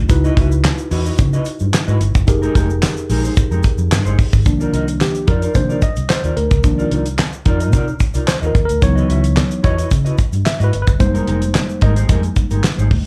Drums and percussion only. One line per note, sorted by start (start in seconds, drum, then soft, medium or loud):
0.09 kick loud
0.09 closed hi-hat loud
0.09 shaker medium
0.24 shaker medium
0.37 kick loud
0.37 closed hi-hat medium
0.52 shaker medium
0.64 snare loud
0.64 clap loud
0.64 closed hi-hat medium
0.64 shaker medium
0.78 shaker soft
0.91 open hi-hat medium
0.91 shaker medium
1.06 shaker medium
1.18 kick loud
1.18 closed hi-hat loud
1.18 shaker medium
1.33 shaker soft
1.45 closed hi-hat medium
1.45 shaker medium
1.60 shaker medium
1.73 snare loud
1.73 clap loud
1.73 closed hi-hat loud
1.73 shaker medium
1.88 shaker medium
2.01 closed hi-hat medium
2.01 shaker soft
2.15 kick loud
2.15 shaker medium
2.27 kick loud
2.27 closed hi-hat loud
2.27 shaker medium
2.43 shaker soft
2.55 kick medium
2.55 closed hi-hat medium
2.55 shaker medium
2.70 shaker medium
2.83 snare loud
2.83 clap medium
2.83 closed hi-hat medium
2.83 shaker medium
2.97 shaker medium
3.10 open hi-hat medium
3.10 shaker medium
3.25 shaker medium
3.36 kick loud
3.36 closed hi-hat loud
3.36 shaker medium
3.51 shaker soft
3.63 kick medium
3.63 closed hi-hat medium
3.63 shaker medium
3.78 shaker medium
3.92 snare loud
3.92 clap loud
3.92 closed hi-hat medium
3.92 shaker medium
4.06 shaker medium
4.19 kick loud
4.19 open hi-hat medium
4.19 shaker soft
4.33 kick loud
4.33 shaker medium
4.45 kick loud
4.45 closed hi-hat medium
4.45 shaker medium
4.61 shaker soft
4.74 closed hi-hat medium
4.88 closed hi-hat medium
4.88 shaker medium
5.01 snare loud
5.01 clap medium
5.01 shaker medium
5.15 closed hi-hat soft
5.15 shaker soft
5.28 kick medium
5.28 closed hi-hat medium
5.42 closed hi-hat soft
5.42 shaker medium
5.54 kick loud
5.54 closed hi-hat loud
5.54 shaker medium
5.70 shaker soft
5.82 kick medium
5.82 closed hi-hat medium
5.82 shaker medium
5.96 closed hi-hat soft
5.96 shaker medium
6.10 snare loud
6.10 clap medium
6.10 shaker medium
6.24 closed hi-hat soft
6.24 shaker medium
6.37 closed hi-hat medium
6.51 kick loud
6.51 closed hi-hat medium
6.51 shaker medium
6.63 kick loud
6.63 closed hi-hat medium
6.63 shaker medium
6.79 shaker soft
6.91 closed hi-hat medium
7.06 closed hi-hat medium
7.06 shaker medium
7.19 snare loud
7.19 clap medium
7.19 shaker medium
7.33 shaker soft
7.45 kick medium
7.45 closed hi-hat medium
7.60 closed hi-hat medium
7.60 shaker medium
7.73 kick loud
7.73 closed hi-hat loud
7.73 shaker medium
7.88 shaker soft
8.00 kick medium
8.00 closed hi-hat medium
8.00 shaker medium
8.14 closed hi-hat soft
8.14 shaker medium
8.28 snare loud
8.28 clap loud
8.28 shaker medium
8.43 shaker medium
8.55 kick loud
8.55 closed hi-hat medium
8.69 closed hi-hat soft
8.69 shaker medium
8.82 kick loud
8.82 closed hi-hat medium
8.82 shaker medium
8.97 shaker soft
9.10 closed hi-hat medium
9.24 closed hi-hat medium
9.24 shaker soft
9.37 snare loud
9.37 clap medium
9.37 shaker medium
9.51 closed hi-hat soft
9.51 shaker soft
9.64 kick medium
9.64 closed hi-hat medium
9.78 closed hi-hat soft
9.78 shaker medium
9.91 kick loud
9.91 closed hi-hat medium
9.91 shaker medium
10.06 closed hi-hat soft
10.06 shaker soft
10.18 kick medium
10.18 closed hi-hat medium
10.18 shaker medium
10.32 closed hi-hat soft
10.32 shaker medium
10.46 snare loud
10.46 clap loud
10.46 shaker medium
10.60 closed hi-hat soft
10.60 shaker medium
10.73 closed hi-hat medium
10.87 kick loud
10.87 closed hi-hat medium
10.87 shaker medium
11.00 kick loud
11.00 closed hi-hat medium
11.00 shaker medium
11.15 closed hi-hat soft
11.15 shaker soft
11.27 closed hi-hat medium
11.42 closed hi-hat medium
11.42 shaker medium
11.55 snare loud
11.55 clap medium
11.55 shaker medium
11.69 shaker soft
11.81 kick medium
11.81 closed hi-hat medium
11.96 closed hi-hat medium
11.96 shaker medium
12.09 kick loud
12.09 closed hi-hat loud
12.09 shaker medium
12.23 closed hi-hat soft
12.23 shaker soft
12.36 kick medium
12.36 closed hi-hat medium
12.36 shaker medium
12.51 closed hi-hat soft
12.51 shaker medium
12.64 snare loud
12.64 clap loud
12.64 shaker medium
12.79 shaker medium
12.91 kick loud
12.91 open hi-hat medium